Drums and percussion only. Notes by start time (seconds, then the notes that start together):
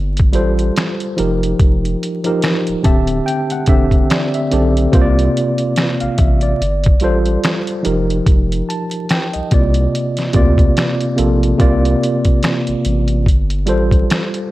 0.17 kick, closed hi-hat
0.33 closed hi-hat
0.59 closed hi-hat
0.76 finger snap, snare, closed hi-hat
1.00 closed hi-hat
1.18 closed hi-hat
1.43 closed hi-hat
1.60 kick, closed hi-hat
1.85 closed hi-hat
2.03 closed hi-hat
2.24 closed hi-hat
2.42 finger snap, snare, closed hi-hat
2.67 closed hi-hat
2.84 kick, closed hi-hat
3.07 closed hi-hat
3.28 closed hi-hat
3.50 closed hi-hat
3.66 kick, closed hi-hat
3.91 kick, closed hi-hat
4.10 finger snap, snare, closed hi-hat
4.34 closed hi-hat
4.51 closed hi-hat
4.77 closed hi-hat
4.93 kick, closed hi-hat
5.19 closed hi-hat
5.37 closed hi-hat
5.58 closed hi-hat
5.76 finger snap, snare, closed hi-hat
6.00 closed hi-hat
6.18 kick, closed hi-hat
6.41 closed hi-hat
6.62 closed hi-hat
6.84 kick, closed hi-hat
7.00 closed hi-hat
7.26 closed hi-hat
7.44 finger snap, snare, closed hi-hat
7.67 closed hi-hat
7.85 closed hi-hat
8.10 closed hi-hat
8.26 kick, closed hi-hat
8.52 closed hi-hat
8.70 closed hi-hat
8.91 closed hi-hat
9.09 finger snap, snare, closed hi-hat
9.33 closed hi-hat
9.51 kick, closed hi-hat
9.74 closed hi-hat
9.95 closed hi-hat
10.17 snare, closed hi-hat
10.33 kick, closed hi-hat
10.58 kick, closed hi-hat
10.77 finger snap, snare, closed hi-hat
11.01 closed hi-hat
11.18 closed hi-hat
11.43 closed hi-hat
11.60 kick, closed hi-hat
11.85 closed hi-hat
12.03 closed hi-hat
12.25 kick, closed hi-hat
12.43 finger snap, snare, closed hi-hat
12.67 closed hi-hat
12.85 closed hi-hat
13.08 closed hi-hat
13.26 kick, closed hi-hat
13.50 closed hi-hat
13.67 closed hi-hat
13.91 kick, closed hi-hat
14.10 finger snap, snare, closed hi-hat
14.34 closed hi-hat